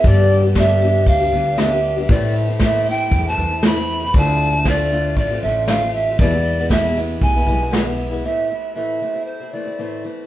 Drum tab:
RD |xxxxxxxx|xxxxxxxx|xxxxxxxx|xxxxxxxx|
SD |--o---o-|--o---o-|--o---o-|--o---o-|
BD |o-o-o---|o-o-o---|o-o-o---|o-o-o---|

RD |--------|
SD |--------|
BD |--------|